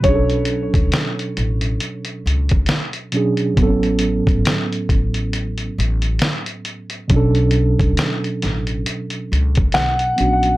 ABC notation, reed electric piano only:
X:1
M:4/4
L:1/8
Q:"Swing 16ths" 1/4=68
K:Bdor
V:1 name="Reed electric piano"
[B,,F,CDGA]6- [B,,F,CDGA] [B,,F,CDG] | [A,,F,B,=C^CA]8 | [B,,F,CDA]6- [B,,F,CDA] [F,B,CDF] |]